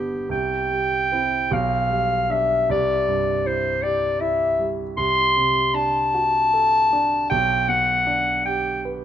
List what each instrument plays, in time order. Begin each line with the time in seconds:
Already playing: grand piano G1 G2 D3 B3 D4 G4, clarinet G4
0.29 grand piano C2, clarinet G5
0.72 grand piano G3
1.12 grand piano C4 E4
1.51 grand piano B1, clarinet F5
1.90 grand piano G3
2.30 grand piano D4 G4, clarinet E5
2.70 grand piano C2, clarinet D5
3.08 grand piano G2
3.46 grand piano E4, clarinet C5
3.83 grand piano G4, clarinet D5
4.20 grand piano E4, clarinet E5
4.59 grand piano G3
4.97 grand piano C2, clarinet C6
5.37 grand piano C3
5.74 grand piano D4, clarinet A5
6.14 grand piano F#4
6.53 grand piano A4
6.93 grand piano D4
7.30 grand piano B1, clarinet G5
7.68 grand piano B2, clarinet F#5
8.07 grand piano D4
8.46 grand piano G4, clarinet G5
8.85 grand piano B4